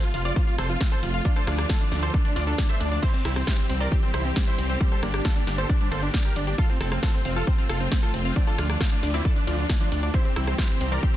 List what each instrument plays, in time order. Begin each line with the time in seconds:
Already playing: string section C3 F3 A3 F4
0.03 grand piano F4, supersaw synth F4, closed hi-hat
0.14 analog synth bass F1, grand piano F4, supersaw synth F4, synth pluck F5, open hi-hat
0.25 supersaw synth F4 D5, grand piano D5, synth pluck F5, closed hi-hat
0.36 grand piano F4, supersaw synth F4, synth pluck C5, kick, closed hi-hat
0.47 synth pluck F4, grand piano F4, supersaw synth F4, closed hi-hat
0.58 analog synth bass F1, synth pluck A4, supersaw synth A4 C5, grand piano C5, cross-stick, open hi-hat
0.69 grand piano F4, supersaw synth F4, closed hi-hat
0.81 synth pluck C4, supersaw synth F4, kick, snare, closed hi-hat
0.92 supersaw synth A4 C5, grand piano C5, closed hi-hat
1.03 analog synth bass F1, grand piano F4, supersaw synth F4, open hi-hat
1.14 grand piano F4, supersaw synth F4, synth pluck F5, closed hi-hat
1.25 string section D3, synth pluck D4, grand piano F4, supersaw synth F4, kick, closed hi-hat
1.36 synth pluck D4, supersaw synth A4 C5, grand piano C5, closed hi-hat
1.47 analog synth bass D2, grand piano D4, supersaw synth D4, synth pluck F4, cross-stick, open hi-hat
1.58 grand piano D4, supersaw synth D4, synth pluck D5, cross-stick, closed hi-hat
1.69 synth pluck A3, supersaw synth F4 A4, grand piano A4, kick, snare, closed hi-hat
1.81 supersaw synth D4, grand piano D4, closed hi-hat
1.92 analog synth bass D2, supersaw synth D4, grand piano D4, synth pluck D5, snare, open hi-hat
2.03 supersaw synth A4 C5, grand piano C5, synth pluck D5, closed hi-hat
2.14 supersaw synth D4, grand piano D4, synth pluck A4, kick, closed hi-hat
2.25 supersaw synth D4, synth pluck D4, grand piano D4, closed hi-hat
2.36 analog synth bass D2, synth pluck D4, supersaw synth F4 D5, grand piano D5, open hi-hat
2.47 supersaw synth D4, grand piano D4, synth pluck A4, closed hi-hat
2.58 supersaw synth D4, synth pluck D4, grand piano D4, kick, snare, open hi-hat
2.69 synth pluck A4, supersaw synth C5 E5, grand piano E5, closed hi-hat
2.80 analog synth bass D2, supersaw synth D4, grand piano D4, open hi-hat
2.91 supersaw synth D4, grand piano D4, synth pluck D5, closed hi-hat
3.02 string section E3 G3 C4 G4, synth pluck C4, supersaw synth E4 C5, grand piano C5, kick, closed hi-hat, crash, ride
3.14 supersaw synth C4, synth pluck C4, grand piano C4, closed hi-hat
3.25 analog synth bass C2, supersaw synth C4, synth pluck E4, cross-stick, open hi-hat, ride
3.36 supersaw synth C4, grand piano C4, synth pluck C5, cross-stick, closed hi-hat
3.47 synth pluck G3, supersaw synth E4 C5, grand piano C5, kick, snare, closed hi-hat, ride
3.58 supersaw synth C4, grand piano C4, closed hi-hat
3.69 analog synth bass C2, supersaw synth C4, grand piano C4, synth pluck C5, open hi-hat, ride
3.80 supersaw synth A#4 D5, synth pluck C5, grand piano D5, closed hi-hat
3.92 supersaw synth C4, grand piano C4, synth pluck G4, kick, closed hi-hat, ride
4.03 supersaw synth C4, synth pluck C4, grand piano C4, closed hi-hat
4.14 analog synth bass C2, supersaw synth E4 C5, synth pluck E4, grand piano C5, cross-stick, open hi-hat, ride
4.25 supersaw synth C4, grand piano C4, closed hi-hat
4.36 synth pluck G3, supersaw synth C4, grand piano C4, kick, snare, closed hi-hat, ride
4.47 supersaw synth E4 C5, grand piano C5, closed hi-hat
4.58 analog synth bass C2, supersaw synth C4, grand piano C4, open hi-hat, ride
4.69 supersaw synth C4, grand piano C4, synth pluck C5, closed hi-hat
4.81 string section D3 A#3, synth pluck G3, supersaw synth C4, grand piano C4, kick, closed hi-hat, ride
4.92 synth pluck G3, supersaw synth A4 C5, grand piano C5, closed hi-hat
5.03 analog synth bass G1, synth pluck A#3, supersaw synth D4, grand piano D4, cross-stick, open hi-hat, ride
5.14 supersaw synth D4, grand piano D4, synth pluck G4, cross-stick, closed hi-hat
5.25 synth pluck D3, supersaw synth F4 A4, grand piano A4, kick, snare, closed hi-hat, ride
5.36 supersaw synth D4, grand piano D4, closed hi-hat
5.47 analog synth bass G1, supersaw synth D4, grand piano D4, synth pluck G4, snare, open hi-hat, ride
5.58 synth pluck G4, supersaw synth A4 C5, grand piano C5, closed hi-hat
5.69 supersaw synth D4, synth pluck D4, grand piano D4, kick, closed hi-hat, ride
5.81 synth pluck G3, supersaw synth D4, grand piano D4, closed hi-hat
5.91 analog synth bass G1, synth pluck A#3, supersaw synth A4 C5, grand piano C5, open hi-hat, ride
6.03 supersaw synth D4, grand piano D4, closed hi-hat
6.14 synth pluck D3, supersaw synth D4, grand piano D4, kick, snare, open hi-hat, ride
6.25 supersaw synth G4 A#4, grand piano A#4, closed hi-hat
6.36 analog synth bass G1, grand piano D4, supersaw synth D4, open hi-hat, ride
6.47 grand piano D4, supersaw synth D4, synth pluck G4, closed hi-hat
6.58 string section C3 F3 A3 F4, synth pluck F4, supersaw synth F4 A4, grand piano A4, kick, closed hi-hat, ride
6.69 supersaw synth C4, grand piano C4, synth pluck F4, closed hi-hat
6.81 analog synth bass F1, grand piano C4, supersaw synth C4, synth pluck A4, cross-stick, open hi-hat, ride
6.92 grand piano C4, supersaw synth C4, synth pluck F5, cross-stick, closed hi-hat
7.03 synth pluck C4, supersaw synth F4 A4, grand piano A4, kick, snare, closed hi-hat, ride
7.14 supersaw synth C4, grand piano C4, closed hi-hat
7.25 analog synth bass F1, supersaw synth C4, grand piano C4, synth pluck F5, open hi-hat, ride
7.36 supersaw synth F4 A4, grand piano A4, synth pluck F5, closed hi-hat
7.47 supersaw synth C4, grand piano C4, synth pluck C5, kick, closed hi-hat, ride
7.58 supersaw synth C4, grand piano C4, synth pluck F4, closed hi-hat
7.69 analog synth bass F1, supersaw synth F4 A4, synth pluck A4, grand piano A4, cross-stick, open hi-hat, ride
7.80 supersaw synth C4, grand piano C4, closed hi-hat
7.91 supersaw synth C4, synth pluck C4, kick, snare, closed hi-hat, ride
8.03 supersaw synth F4 A4, grand piano A4, closed hi-hat
8.14 analog synth bass F1, supersaw synth C4, grand piano C4, open hi-hat, ride
8.25 supersaw synth C4, grand piano C4, synth pluck F5, closed hi-hat
8.36 string section D3, supersaw synth C4, grand piano C4, synth pluck D4, kick, closed hi-hat, ride
8.47 synth pluck D4, supersaw synth F4 A4, grand piano A4, closed hi-hat
8.58 analog synth bass D2, grand piano D4, supersaw synth D4, synth pluck F4, cross-stick, open hi-hat, ride
8.69 grand piano D4, supersaw synth D4, synth pluck D5, cross-stick, closed hi-hat
8.80 synth pluck A3, supersaw synth D4 F4, grand piano F4, kick, snare, closed hi-hat, ride
8.92 grand piano D4, supersaw synth D4, closed hi-hat
9.03 analog synth bass D2, grand piano D4, supersaw synth D4, synth pluck D5, snare, open hi-hat, ride
9.14 supersaw synth C4 E4, grand piano E4, synth pluck D5, closed hi-hat
9.25 grand piano D4, supersaw synth D4, synth pluck A4, kick, closed hi-hat, ride
9.36 grand piano D4, synth pluck D4, supersaw synth D4, closed hi-hat
9.47 analog synth bass D2, supersaw synth F3 D4, grand piano D4, synth pluck F4, open hi-hat, ride
9.58 grand piano D4, supersaw synth D4, closed hi-hat
9.69 synth pluck A3, grand piano D4, supersaw synth D4, kick, snare, open hi-hat, ride
9.80 supersaw synth F3 D4, grand piano D4, closed hi-hat
9.92 analog synth bass D2, grand piano D4, supersaw synth D4, open hi-hat, ride
10.03 grand piano D4, supersaw synth D4, synth pluck D5, closed hi-hat
10.14 string section E3 G3 C4 G4, synth pluck C4, supersaw synth E4 C5, grand piano C5, kick, closed hi-hat, ride
10.25 grand piano C4, synth pluck C4, supersaw synth C4, closed hi-hat
10.36 analog synth bass C2, grand piano C4, supersaw synth C4, synth pluck E4, cross-stick, open hi-hat, ride
10.47 grand piano C4, supersaw synth C4, synth pluck C5, cross-stick, closed hi-hat
10.58 synth pluck G3, supersaw synth E4 C5, grand piano C5, kick, snare, closed hi-hat, ride
10.70 grand piano C4, supersaw synth C4, closed hi-hat
10.81 analog synth bass C2, grand piano C4, supersaw synth C4, synth pluck C5, open hi-hat, ride
10.92 supersaw synth A#4 D5, synth pluck C5, grand piano D5, closed hi-hat
11.03 grand piano C4, supersaw synth C4, synth pluck G4, kick, closed hi-hat, ride